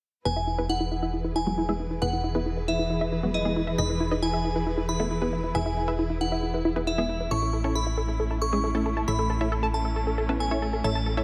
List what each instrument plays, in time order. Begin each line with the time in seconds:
0.25 fm bass E1, string section E3 E4 G#4 B4, synth pluck B3 E4 G#4 B4, synth arpeggio sound E4, synth bell G#5
0.36 synth pluck E4, synth arpeggio sound E5
0.47 synth arpeggio sound E4, synth pluck E4
0.58 synth pluck B3 E4 G#4 B4, synth arpeggio sound B4
0.69 synth pluck E4, synth arpeggio sound E4, synth bell F#5
0.80 synth pluck E4, synth arpeggio sound E4
0.91 synth arpeggio sound E4
1.02 synth pluck E4, synth arpeggio sound E5
1.14 synth arpeggio sound E4
1.24 synth pluck E4, synth arpeggio sound B4
1.36 synth arpeggio sound E4, synth pluck E4, synth bell G#5
1.47 synth pluck F#3 G#3 B3 F#4, synth arpeggio sound E4
1.58 synth arpeggio sound E4, synth pluck E4
1.69 synth pluck G#3 B3 E4 G#4, synth arpeggio sound E5
1.80 synth arpeggio sound E4, synth pluck E4
1.91 synth pluck E4, synth arpeggio sound B4
2.02 fm bass E1, synth pluck B3 E4 G#4 B4, synth arpeggio sound E4, synth bell F#5
2.13 synth arpeggio sound E4, synth pluck E4
2.24 synth arpeggio sound E4, synth pluck E4
2.35 synth pluck B3 E4 G#4 B4, synth arpeggio sound E5
2.46 synth arpeggio sound E4, synth pluck E4
2.57 synth pluck E4, synth arpeggio sound B4
2.68 synth arpeggio sound E4, synth bell E5
2.79 synth arpeggio sound E4, synth pluck E4
2.90 synth arpeggio sound E4
3.01 synth pluck E4, synth arpeggio sound E5
3.12 synth arpeggio sound E4, synth pluck E4
3.23 synth pluck F#3 G#3 B3 F#4, synth arpeggio sound B4
3.34 synth arpeggio sound E4, synth pluck E4, synth bell D#5
3.45 synth pluck G#3 B3 E4 G#4, synth arpeggio sound E4
3.56 synth arpeggio sound E4, synth pluck E4
3.67 synth pluck E4, synth arpeggio sound E5
3.78 fm bass E1, synth pluck D#4 G#4 B4 D#5, synth arpeggio sound E4, synth bell B5
3.89 synth pluck E4, synth arpeggio sound B4
4.00 synth arpeggio sound E4, synth pluck E4
4.11 synth pluck D#4 G#4 B4 D#5, synth arpeggio sound E4
4.22 synth pluck E4, synth arpeggio sound E4, synth bell G#5
4.33 synth pluck E4, synth arpeggio sound E5
4.45 synth arpeggio sound E4
4.56 synth pluck E4, synth arpeggio sound B4
4.67 synth arpeggio sound E4
4.78 synth pluck E4, synth arpeggio sound E4
4.89 synth arpeggio sound E4, synth pluck E4, synth bell B5
5.00 synth pluck A3 B3 E4 A4, synth arpeggio sound E5
5.11 synth arpeggio sound E4, synth pluck E4
5.22 synth pluck B3 E4 G#4 B4, synth arpeggio sound B4
5.33 synth pluck E4, synth arpeggio sound E4
5.44 synth arpeggio sound E4, synth pluck E4
5.55 fm bass E1, synth arpeggio sound E4, synth pluck E4 G#4 B4 E5, synth bell G#5
5.66 synth pluck E4, synth arpeggio sound E5
5.77 synth arpeggio sound E4, synth pluck E4
5.88 synth pluck E4 G#4 B4 E5, synth arpeggio sound B4
5.99 synth pluck E4, synth arpeggio sound E4
6.10 synth arpeggio sound E4, synth pluck E4
6.21 synth arpeggio sound E4, synth bell F#5
6.32 synth pluck E4, synth arpeggio sound E5
6.43 synth arpeggio sound E4
6.54 synth pluck E4, synth arpeggio sound B4
6.65 synth arpeggio sound E4, synth pluck E4
6.76 synth pluck B3 E4 G#4 B4, synth arpeggio sound E4
6.87 synth pluck E4, synth arpeggio sound E4, synth bell E5
6.98 synth pluck G#3 B3 E4 G#4, synth arpeggio sound E5
7.09 synth arpeggio sound E4, synth pluck E4
7.20 synth pluck E4, synth arpeggio sound B4
7.31 fm bass A1, string section A3 C#4, synth pluck C#4 E4 A4 C#5, synth arpeggio sound A4, synth bell C#6
7.42 synth pluck E4, synth arpeggio sound A4
7.53 synth pluck E4, synth arpeggio sound A4
7.64 synth pluck C#4 E4 A4 C#5, synth arpeggio sound A5
7.75 synth pluck E4, synth arpeggio sound A4, synth bell B5
7.86 synth pluck E4, synth arpeggio sound E5
7.97 synth arpeggio sound A4
8.08 synth pluck E4, synth arpeggio sound A4
8.20 synth arpeggio sound A4
8.30 synth pluck E4, synth arpeggio sound A5
8.42 synth pluck E4, synth arpeggio sound A4, synth bell C#6
8.53 synth pluck G#3 C#4 E4 G#4, synth arpeggio sound E5
8.64 synth pluck E4, synth arpeggio sound A4
8.75 synth pluck A3 C#4 E4 A4, synth arpeggio sound A4
8.86 synth pluck E4, synth arpeggio sound A4
8.97 synth pluck E4, synth arpeggio sound A5
9.08 fm bass A1, synth pluck E4 A4 C#5 E5, synth arpeggio sound A4, synth bell B5
9.19 synth pluck A4, synth arpeggio sound E5
9.30 synth pluck A4, synth arpeggio sound A4
9.41 synth pluck E4 A4 C#5 E5, synth arpeggio sound A4
9.52 synth pluck A4, synth arpeggio sound A4
9.63 synth pluck A4, synth arpeggio sound A5
9.74 synth arpeggio sound A4, synth bell A5
9.85 synth pluck A4, synth arpeggio sound E5
9.96 synth arpeggio sound A4
10.07 synth pluck A4, synth arpeggio sound A4
10.18 synth arpeggio sound A4, synth pluck A4
10.29 synth pluck B3 C#4 E4 B4, synth arpeggio sound A5
10.40 synth pluck A4, synth arpeggio sound A4, synth bell G#5
10.51 synth pluck C#4 E4 A4 C#5, synth arpeggio sound E5
10.62 synth pluck A4, synth arpeggio sound A4
10.73 synth pluck A4, synth arpeggio sound A4
10.84 fm bass A1, synth pluck E4 A4 C#5 E5, synth arpeggio sound A4, synth bell A5, riser
10.95 synth pluck A4, synth arpeggio sound A5
11.06 synth pluck A4, synth arpeggio sound A4
11.17 synth pluck E4 A4 C#5 E5, synth arpeggio sound E5